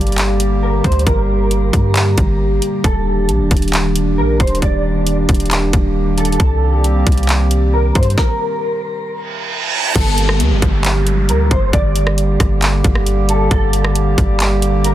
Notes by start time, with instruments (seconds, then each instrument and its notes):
Already playing: 808-style bass G1, analog synth pad D3 G3 A#3 G4
0.01 closed hi-hat
0.07 closed hi-hat
0.12 closed hi-hat
0.18 clap, closed hi-hat
0.40 closed hi-hat
0.63 clean electric guitar A#4
0.84 808-style bass D2, clean electric guitar C5, kick, closed hi-hat
0.92 closed hi-hat
0.99 closed hi-hat
1.07 808-style bass G1, clean electric guitar A#4, kick, closed hi-hat
1.51 closed hi-hat
1.73 808-style bass G2, kick, closed hi-hat
1.96 clap, closed hi-hat
2.18 808-style bass G1, kick, closed hi-hat
2.62 closed hi-hat
2.84 808-style bass D#1, analog synth pad D#3 D4, clean electric guitar A4, kick, closed hi-hat
3.29 808-style bass A#1, closed hi-hat
3.40 808-style bass D#1
3.51 808-style bass D#1, kick, closed hi-hat
3.57 closed hi-hat
3.62 closed hi-hat
3.68 closed hi-hat
3.73 clap, closed hi-hat
3.96 closed hi-hat
4.18 808-style bass A#1, clean electric guitar A#4
4.40 808-style bass D#1, clean electric guitar C5, kick, closed hi-hat
4.47 closed hi-hat
4.55 closed hi-hat
4.62 808-style bass D#1, clean electric guitar D5, kick, closed hi-hat
5.07 closed hi-hat
5.29 808-style bass D#1, kick, closed hi-hat
5.34 closed hi-hat
5.40 closed hi-hat
5.46 closed hi-hat
5.51 clap, closed hi-hat
5.73 808-style bass D#1, kick, closed hi-hat
6.18 clean electric guitar A4, closed hi-hat
6.25 closed hi-hat
6.32 closed hi-hat
6.40 808-style bass C2, analog synth pad G3 A#3 C4 G4, clean electric guitar A4, kick, closed hi-hat
6.84 closed hi-hat
7.07 808-style bass C2, kick, closed hi-hat
7.12 closed hi-hat
7.18 closed hi-hat
7.23 closed hi-hat
7.29 clap, closed hi-hat
7.51 closed hi-hat
7.74 clean electric guitar A#4
7.95 808-style bass G2, clean electric guitar C5, kick, closed hi-hat
8.03 closed hi-hat
8.10 closed hi-hat
8.17 clean electric guitar A#4, kick, snare
9.07 reverse cymbal
9.95 808-style bass G1, analog synth pad D3 G3 A#3 G4, clean electric guitar A4, kick, closed hi-hat, crash, downlifter
10.18 closed hi-hat
10.29 cross-stick
10.40 808-style bass D2, closed hi-hat
10.51 808-style bass G1
10.62 808-style bass G1, kick, closed hi-hat
10.85 clap, closed hi-hat
11.07 closed hi-hat
11.29 808-style bass D2, clean electric guitar A#4, closed hi-hat
11.51 808-style bass G1, clean electric guitar C5, kick, closed hi-hat
11.73 808-style bass G1, clean electric guitar D5, kick, closed hi-hat
11.96 closed hi-hat
12.07 cross-stick
12.18 closed hi-hat
12.40 808-style bass G1, kick, cross-stick, closed hi-hat
12.62 clap, closed hi-hat
12.84 808-style bass G1, kick, closed hi-hat
12.95 cross-stick
13.06 closed hi-hat
13.29 clean electric guitar A4, closed hi-hat
13.51 808-style bass G1, clean electric guitar A4, kick, closed hi-hat
13.73 closed hi-hat
13.85 cross-stick
13.95 closed hi-hat
14.18 808-style bass G1, kick, closed hi-hat
14.40 clap, closed hi-hat
14.62 closed hi-hat
14.84 clean electric guitar A#4, closed hi-hat